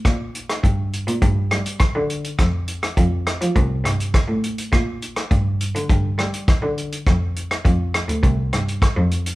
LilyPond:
<<
  \new Staff \with { instrumentName = "Cello" } { \clef bass \time 4/4 \key g \dorian \tempo 4 = 103 bes,4 g,8. bes,16 g,8 g8. d8 r16 | f,4 f,8. f16 c,8 g,8 r16 a,8 r16 | bes,4 g,8. d16 g,8 g8. d8 r16 | f,4 f,8. d,16 c,8 g,8 r16 f,8 r16 | }
  \new DrumStaff \with { instrumentName = "Drums" } \drummode { \time 4/4 <hh bd ss>8 hh16 <hh ss>16 <hh bd>8 hh16 hh16 <hh bd>8 <hh ss>16 hh16 <hh bd ss>8 hh16 hh16 | <hh bd ss>8 hh16 <hh ss>16 <hh bd>8 <hh ss>16 hh16 <hh bd>8 <hh ss>16 hh16 <hh bd ss>8 hh16 hh16 | <hh bd ss>8 hh16 <hh ss>16 <hh bd>8 hh16 hh16 <hh bd>8 <hh ss>16 hh16 <hh bd ss>8 hh16 hh16 | <hh bd ss>8 hh16 <hh ss>16 <hh bd>8 <hh ss>16 hh16 <hh bd>8 <hh ss>16 hh16 <hh bd ss>8 hh16 hh16 | }
>>